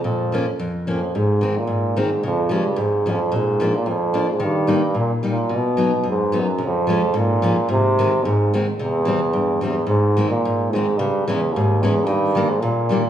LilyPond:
<<
  \new Staff \with { instrumentName = "Steel-string acoustic guitar" } { \clef bass \time 2/4 \key aes \major \tempo 4 = 110 << { r8 <f bes des'>8 r8 <f bes des'>8 | r8 <ees aes c'>8 r8 <ees aes c'>8 | r8 <f aes des'>8 r8 <f aes des'>8 | r8 <f bes d'>8 r8 <f bes d'>8 |
r8 <g bes ees'>8 r8 <g bes ees'>8 | r8 <fis b dis'>8 r8 <fis b dis'>8 | r8 <f aes des'>8 r8 <f aes des'>8 | r8 <ees aes c'>8 r8 <ees aes c'>8 |
r8 <e g c'>8 r8 <e g c'>8 | r8 <ees aes c'>8 r8 <ees aes c'>8 | r8 <fes aes des'>8 r8 <fes aes des'>8 | r8 <ees g bes>8 r8 <ees g bes>8 | } \\ { bes,4 f,4 | aes,4 aes,4 | des4 aes,4 | bes,4 f,4 |
ees4 bes,4 | b,4 fis,4 | des4 aes,4 | aes,4 aes,4 |
c4 g,4 | aes,4 aes,4 | des4 aes,4 | ees4 bes,4 | } >> }
  \new Staff \with { instrumentName = "Euphonium" } { \clef bass \time 2/4 \key aes \major f,4 r8 f,8 | aes,8. bes,8. aes,8 | f,8 g,8 aes,8 f,8 | aes,8. bes,16 f,8. aes,16 |
g,4 bes,8 bes,8 | b,4 aes,8 fis,8 | f,4 bes,4 | c4 aes,8 r8 |
e,4. e,8 | aes,8. bes,8. aes,8 | g,8 fes,8 ees,8 fes,8 | g,8. aes,16 bes,4 | }
>>